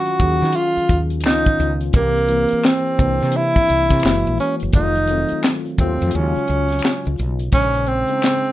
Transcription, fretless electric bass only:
0.20 0.40 D#2 medium
0.42 0.53 D#3 medium
0.77 muted fretless electric bass stroke soft
0.90 1.25 D#2 medium
1.25 1.47 C#2 loud
1.47 1.58 B1 medium
1.60 1.90 C#2 medium
1.95 2.45 C2 medium
2.53 muted fretless electric bass stroke soft
3.00 3.19 C2 medium
3.22 3.52 C3 medium
3.70 3.89 C2 medium
3.91 4.02 C3 medium
4.05 4.24 F#1 medium
4.27 4.38 A#1 medium
4.63 4.73 F#1 medium
4.74 5.24 F1 loud
5.32 muted fretless electric bass stroke soft
5.79 5.98 D#2 medium
6.02 6.12 F2 medium
6.15 6.33 D#2 medium
6.37 muted fretless electric bass stroke soft
6.49 6.79 C#2 medium
7.07 7.17 C#2 medium
7.19 7.49 B1 medium
7.53 8.03 A#1 medium

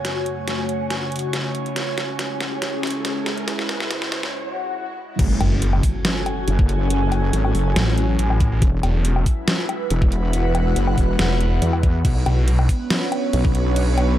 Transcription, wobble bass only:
5.19 5.39 F#1 loud
6.48 7.32 F#1 loud
7.33 7.53 G#1 loud
7.55 7.75 F#1 loud
8.62 8.82 E1 loud
9.90 10.75 E1 loud
10.76 10.96 F#1 loud
10.98 11.17 E1 loud
11.62 12.03 E2 loud
12.05 12.25 B1 loud
13.33 14.17 B1 loud

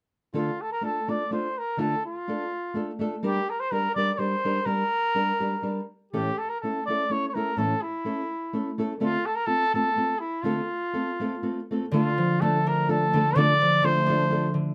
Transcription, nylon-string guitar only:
0.33 0.49 D3 medium
0.33 0.49 A3 medium
0.33 0.50 D4 medium
0.33 0.50 F4 medium
0.33 0.50 A4 medium
0.81 0.97 A3 soft
0.81 0.98 D4 soft
0.81 0.99 F4 soft
0.81 0.99 A4 soft
1.08 1.22 A3 soft
1.08 1.22 D4 soft
1.08 1.22 F4 soft
1.08 1.22 A4 medium
1.31 1.46 A3 soft
1.31 1.47 D4 soft
1.31 1.47 F4 medium
1.31 1.47 A4 soft
1.77 1.94 D3 medium
1.77 1.94 A3 medium
1.77 1.94 D4 medium
1.77 1.94 F4 medium
1.77 1.94 A4 soft
2.28 2.43 A3 soft
2.28 2.43 D4 soft
2.28 2.44 F4 soft
2.28 2.44 A4 medium
2.74 2.90 A3 soft
2.74 2.91 D4 soft
2.74 2.91 F4 medium
2.74 2.91 A4 soft
2.99 3.13 A3 medium
2.99 3.14 D4 soft
2.99 3.14 F4 medium
2.99 3.14 A4 medium
3.23 3.38 G3 medium
3.23 3.38 D4 medium
3.23 3.39 G4 medium
3.23 3.39 A#4 medium
3.71 3.87 G3 soft
3.71 3.87 D4 medium
3.71 3.87 G4 medium
3.71 3.88 A#4 medium
3.96 4.10 G3 medium
3.96 4.11 D4 medium
3.96 4.11 G4 medium
3.96 4.11 A#4 medium
4.18 4.34 G3 soft
4.18 4.35 D4 soft
4.18 4.35 G4 soft
4.18 4.35 A#4 medium
4.45 4.58 G3 soft
4.45 4.59 D4 medium
4.45 4.59 G4 medium
4.45 4.59 A#4 medium
4.66 4.82 G3 medium
4.66 4.83 D4 soft
4.66 4.83 G4 medium
4.66 4.83 A#4 medium
5.15 5.31 G3 soft
5.15 5.31 D4 soft
5.15 5.31 G4 soft
5.15 5.31 A#4 medium
5.40 5.55 G3 medium
5.40 5.55 D4 medium
5.40 5.55 G4 medium
5.40 5.55 A#4 medium
5.62 5.79 G3 soft
5.62 5.79 D4 medium
5.62 5.80 G4 medium
5.62 5.80 A#4 soft
6.13 6.30 A2 medium
6.13 6.29 E3 medium
6.13 6.29 A3 medium
6.13 6.30 C#4 medium
6.13 6.30 E4 medium
6.13 6.30 A4 medium
6.63 6.78 A3 soft
6.63 6.78 C#4 soft
6.63 6.79 E4 soft
6.63 6.79 A4 soft
6.88 7.02 A3 soft
6.88 7.03 C#4 soft
6.88 7.03 E4 soft
6.88 7.03 A4 medium
7.10 7.26 A3 soft
7.10 7.26 C#4 soft
7.10 7.26 E4 soft
7.10 7.26 A4 soft
7.35 7.49 A3 soft
7.35 7.49 C#4 soft
7.35 7.50 E4 soft
7.35 7.50 A4 soft
7.57 7.73 A2 medium
7.57 7.73 E3 soft
7.57 7.74 A3 soft
7.57 7.74 C#4 medium
7.57 7.73 E4 medium
7.57 7.74 A4 medium
8.05 8.21 A3 soft
8.05 8.21 C#4 soft
8.05 8.21 E4 medium
8.05 8.21 A4 soft
8.53 8.69 A3 medium
8.53 8.69 C#4 medium
8.53 8.69 E4 soft
8.53 8.69 A4 soft
8.78 8.92 A3 medium
8.78 8.92 C#4 medium
8.78 8.92 E4 medium
8.78 8.93 A4 medium
9.00 9.16 D3 medium
9.00 9.16 A3 medium
9.00 9.16 C4 medium
9.00 9.16 F4 medium
9.00 9.16 A4 medium
9.47 9.63 A3 soft
9.47 9.63 C4 soft
9.47 9.63 F4 medium
9.47 9.63 A4 medium
9.74 9.88 A3 soft
9.74 9.88 C4 soft
9.74 9.88 F4 medium
9.74 9.88 A4 medium
9.96 10.12 A3 soft
9.96 10.12 C4 soft
9.96 10.12 F4 medium
9.96 10.12 A4 soft
10.43 10.59 D3 medium
10.43 10.60 A3 medium
10.43 10.60 C4 medium
10.43 10.60 F4 medium
10.43 10.61 A4 medium
10.93 11.09 A3 soft
10.93 11.09 C4 soft
10.93 11.09 F4 soft
10.93 11.09 A4 soft
11.20 11.34 A3 medium
11.20 11.34 C4 medium
11.20 11.34 F4 medium
11.20 11.35 A4 medium
11.43 11.59 A3 soft
11.43 11.59 C4 soft
11.43 11.59 F4 soft
11.43 11.60 A4 soft
11.71 11.84 A3 soft
11.71 11.84 C4 soft
11.71 11.85 F4 soft
11.71 11.85 A4 medium
11.93 12.09 D3 medium
11.93 12.09 A3 medium
11.93 12.09 D4 medium
11.93 12.09 F4 medium
11.93 12.09 A4 medium
12.41 12.57 A3 medium
12.41 12.58 D4 medium
12.41 12.58 F4 medium
12.41 12.58 A4 medium
12.88 13.04 A3 soft
12.88 13.05 D4 soft
12.88 13.05 F4 medium
12.88 13.05 A4 medium
13.15 13.29 A3 medium
13.15 13.28 D4 medium
13.15 13.29 F4 medium
13.15 13.30 A4 medium
13.36 13.52 D3 medium
13.36 13.52 A3 medium
13.36 13.53 D4 medium
13.36 13.53 F4 medium
13.36 13.53 A4 medium
13.83 13.99 A3 medium
13.83 13.99 D4 medium
13.83 13.99 F4 medium
13.83 13.99 A4 medium
14.08 14.22 A3 medium
14.08 14.22 D4 medium
14.08 14.23 F4 medium
14.08 14.23 A4 medium
14.30 14.46 A3 medium
14.30 14.46 D4 soft
14.30 14.46 F4 medium
14.30 14.47 A4 medium

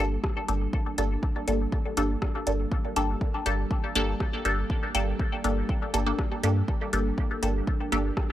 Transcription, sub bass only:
0.00 0.17 G1 loud
0.49 0.67 G1 medium
0.98 1.17 G1 loud
1.48 1.66 G1 medium
1.97 2.16 G1 loud
2.47 2.65 G1 medium
2.96 3.15 G1 loud
3.46 3.65 G1 medium
3.96 4.14 G1 loud
4.45 4.64 G1 medium
4.95 5.13 G1 loud
5.44 5.63 G1 medium
5.94 6.12 G1 loud
6.43 6.62 G2 medium
6.93 7.12 G1 loud
7.43 7.61 G1 medium
7.92 8.11 G1 medium

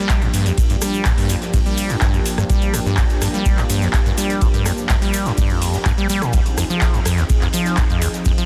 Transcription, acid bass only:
0.00 0.24 G3 medium
0.22 0.28 G2 medium
0.34 0.47 G2 medium
0.46 0.52 F2 medium
0.70 0.76 G2 medium
0.82 1.07 G3 medium
1.06 1.12 G2 medium
1.18 1.31 G2 medium
1.30 1.36 F2 medium
1.54 1.60 G2 medium
1.66 1.92 G3 medium
1.90 1.96 G2 medium
2.02 2.15 G2 medium
2.14 2.20 F2 medium
2.38 2.44 G2 medium
2.50 2.75 G3 medium
2.74 2.80 G2 medium
2.86 2.99 G2 medium
2.98 3.04 F2 medium
3.22 3.28 G2 medium
3.34 3.60 G3 medium
3.58 3.64 G2 medium
3.70 3.84 G2 medium
3.82 3.88 F2 medium
4.06 4.12 G2 medium
4.18 4.43 G3 medium
4.42 4.48 G2 medium
4.54 4.67 G2 medium
4.66 4.72 F2 medium
4.90 4.96 G2 medium
5.02 5.27 G3 medium
5.26 5.32 G2 medium
5.38 5.51 G2 medium
5.50 5.75 F2 medium
5.74 5.78 G2 medium
5.86 5.92 G2 loud
5.98 6.08 G3 loud
6.10 6.23 G3 loud
6.22 6.35 A#2 medium
6.34 6.40 D#2 medium
6.58 6.64 F2 medium
6.70 6.95 F3 medium
6.94 7.00 F2 medium
7.06 7.19 F2 medium
7.18 7.24 D#2 medium
7.42 7.48 F2 medium
7.54 7.79 F3 medium
7.78 7.84 F2 medium
7.90 8.03 F2 medium
8.02 8.08 D#2 medium
8.26 8.32 F2 medium
8.38 8.46 F3 medium

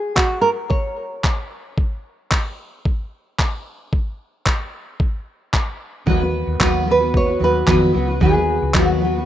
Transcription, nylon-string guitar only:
0.00 0.15 G#4 medium
0.16 0.41 F#4 medium
0.41 0.49 A#4 loud
0.70 1.46 C#5 medium
6.91 7.16 B4 medium
7.17 7.43 C#5 medium
7.44 8.25 B4 medium
8.22 8.77 G#4 medium
8.78 9.25 F#4 medium

